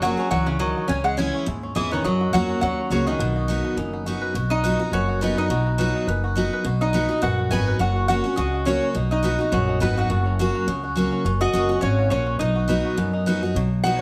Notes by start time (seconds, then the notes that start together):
Already playing: F#1 C#4
0.02 F#3 A#3 C#4 F#4 G#4 F#5
0.17 C#4 G#4
0.31 C#2 E3 F#3 F#4 F#5
0.46 C#3 F#4 C#5
0.59 D#3 F#3 C#4 D#5
0.77 F#4
0.88 C#2 C#3 C#4 G#5
1.04 G#3 G#4 F#5
1.17 E3 G#3 C#4 E4 G#5
1.34 C#4
1.46 D#2 G#2 E4
1.63 C#4
1.75 E2 E3 G#3 C#4 E4 G#4 D#5
1.91 D#3 C#4 E4 B4 C#5
2.04 F#2 F#3 C#4 D#5
2.21 F#4
2.33 E2 F#3 A#3 C#4 F#4 F#5
2.50 C#4
2.61 D#2 C#3 F#3 F#4 F#5
2.79 C#4
2.90 C#2 C#3 F#3 A#3 C#4 F#4 C#5
3.06 D#3 C#4 F#4 D#5
3.19 B1 B2 B3
3.36 F#4
3.48 F#3 B3 D#4 F#4
3.64 B3
3.77 F#1 F#2 D#4
3.93 B3
4.06 F#3 B3 D#4 F#4
4.22 B4
4.34 B1 B2 F#4
4.50 B3 D#4 D#5
4.64 F#3 B3 D#4 F#4 B4
4.79 D#4 F#4
4.92 F#1 F#2 F#4 B4 C#5
5.08 F#4
5.21 F#3 B3 D#4 F#4 B4
5.37 D#4 B4 D#5
5.49 B1 B2 F#4
5.66 B3
5.78 F#3 B3 D#4 F#4 B4
5.95 D#4
6.07 F#1 F#2 B4
6.24 F#4
6.35 F#3 B3 D#4 F#4
6.53 B4
6.64 B1 B2 F#4
6.81 B3 D#4 D#5
6.93 F#3 B3 D#4 F#4 B4
7.09 D#4 F#4
7.22 A#1 F#2 F#4 B4 F#5
7.39 F#4
7.51 G#1 F#3 B3 D#4 F#4 B4 G#5
7.67 B4
7.79 F#1 F#2 C#4 F#4 F#5
7.96 F#4
8.08 F#3 A#3 C#4 F#4 F#5
8.24 C#4 F#4
8.36 C#2 C#3 F#4 D#5
8.54 F#4
8.65 F#3 A#3 C#4 F#4 C#5
8.83 C#4
8.95 B1 B2 D#4
9.11 D#4 F#4 D#5
9.23 F#3 B3 D#4 F#4 B4
9.39 D#4 F#4
9.52 A#1 F#2 B3 F#4 C#5
9.69 D#4
9.80 G#1 F#3 B3 D#4 F#4 B4
9.97 B3 F#4 F#5
10.10 F#1 F#2 F#4
10.26 C#4
10.39 F#3 A#3 C#4 F#4
10.55 F#4
10.67 C#2 C#3 C#4
10.84 F#4
10.96 F#3 A#3 C#4 F#4
11.12 C#4
11.25 F#1 F#2 C#4
11.41 F#4 D#5
11.53 F#1 F#3 A#3 C#4 F#4
11.69 C#4 F#4
11.81 G#1 G#2 C#4 F#4 C#5
11.98 F#4
12.10 A#1 A#2 C#4 F#4 C#5
12.27 C#4
12.39 B1 B2 D#4 D#5
12.56 F#4
12.68 F#3 B3 D#4 F#4 B4
12.85 F#4
12.97 F#2 B3
13.13 D#4
13.26 F#3 B3 D#4 F#4 B4
13.43 B3 D#4 F#4
13.55 B1 B2 F#3
13.84 F#3 B3 D#4 F#4 F#5